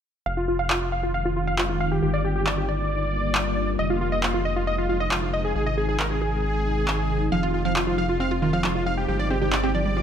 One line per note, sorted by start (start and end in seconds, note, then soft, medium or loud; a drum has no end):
0.26 2.00 F1 medium
0.26 0.34 F5 medium
0.26 0.34 F5 loud
0.37 0.45 F4 medium
0.48 0.56 F4 medium
0.59 0.67 F5 medium
0.70 0.78 F4 medium
0.70 clap loud
0.81 0.89 F4 medium
0.92 1.00 F5 medium
1.03 1.11 F4 medium
1.14 1.22 F5 medium
1.25 1.33 F4 medium
1.36 1.44 F4 medium
1.47 1.55 F5 medium
1.58 1.66 F4 medium
1.58 clap loud
1.69 1.77 F4 medium
1.69 1.78 F4 medium
1.80 1.89 F5 medium
1.91 2.00 G4 medium
2.02 3.77 G1 medium
2.02 2.11 G4 medium
2.14 2.22 D5 medium
2.25 2.33 G4 medium
2.36 2.44 G4 medium
2.47 2.55 D5 medium
2.47 clap loud
2.58 2.66 G4 medium
2.69 3.70 D5 loud
2.69 3.70 D5 medium
3.35 clap loud
3.79 5.53 F1 medium
3.79 3.87 D#5 medium
3.79 3.87 D#5 loud
3.90 3.98 F4 medium
4.01 4.09 F4 medium
4.12 4.20 D#5 medium
4.23 4.31 F4 medium
4.23 clap loud
4.34 4.42 F4 medium
4.45 4.53 D#5 medium
4.56 4.64 F4 medium
4.67 4.75 D#5 medium
4.78 4.86 F4 medium
4.89 4.97 F4 medium
5.00 5.08 D#5 medium
5.11 5.19 F4 medium
5.11 clap loud
5.22 5.30 F4 medium
5.33 5.41 D#5 medium
5.45 5.53 G#4 medium
5.55 7.30 G#1 medium
5.55 5.64 G#4 medium
5.66 5.75 D#5 medium
5.78 5.86 G#4 medium
5.89 5.97 G#4 medium
6.00 6.08 A#4 medium
6.00 clap loud
6.11 6.19 G#4 medium
6.22 7.23 G#4 medium
6.22 7.23 G#4 loud
6.88 clap loud
7.32 9.06 F1 medium
7.32 7.37 F3 loud
7.32 7.40 F5 medium
7.43 7.46 F4 loud
7.43 7.51 F4 medium
7.54 7.62 F4 medium
7.65 7.68 F3 loud
7.65 7.73 F5 medium
7.76 7.83 F3 medium
7.76 7.84 F4 medium
7.76 clap loud
7.87 7.90 F3 medium
7.87 7.95 F4 medium
7.98 8.03 F3 medium
7.98 8.06 F5 medium
8.09 8.17 F4 medium
8.20 8.25 C4 loud
8.20 8.28 F5 medium
8.31 8.34 F4 loud
8.31 8.39 F4 medium
8.42 8.50 D#3 loud
8.42 8.50 F4 medium
8.53 8.56 F3 loud
8.53 8.61 F5 medium
8.64 8.69 F3 medium
8.64 8.72 F4 medium
8.64 clap loud
8.75 8.83 F4 medium
8.86 8.91 F3 medium
8.86 8.94 F5 medium
8.97 9.05 G4 medium
9.08 10.02 G1 medium
9.08 9.13 F3 medium
9.08 9.16 G4 medium
9.19 9.27 D5 medium
9.30 9.38 C4 loud
9.30 9.39 G4 medium
9.41 9.44 D3 medium
9.41 9.50 G4 medium
9.53 9.61 D5 medium
9.53 clap loud
9.64 9.68 C4 loud
9.64 9.72 G4 medium
9.75 9.80 F3 medium
9.75 10.02 D5 medium
9.75 10.02 D5 loud
9.86 9.91 G3 medium
9.97 10.02 F3 medium